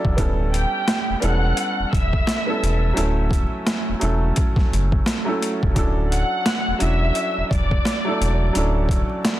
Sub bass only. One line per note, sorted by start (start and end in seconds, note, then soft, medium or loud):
0.05 0.16 E1 medium
0.18 0.66 D1 loud
1.10 1.15 E1 soft
1.23 1.53 E1 loud
1.80 1.85 E1 soft
1.93 2.22 E1 medium
2.63 2.92 E1 medium
2.98 3.45 D1 loud
3.89 3.94 E1 soft
4.02 4.32 E1 medium
4.57 4.62 F#1 medium
4.72 5.01 F#1 medium
5.63 5.74 E1 loud
5.76 6.24 D1 loud
6.68 6.73 E1 medium
6.81 7.11 E1 loud
7.38 7.43 E1 soft
7.51 7.81 E1 medium
8.21 8.50 E1 medium
8.56 9.03 D1 loud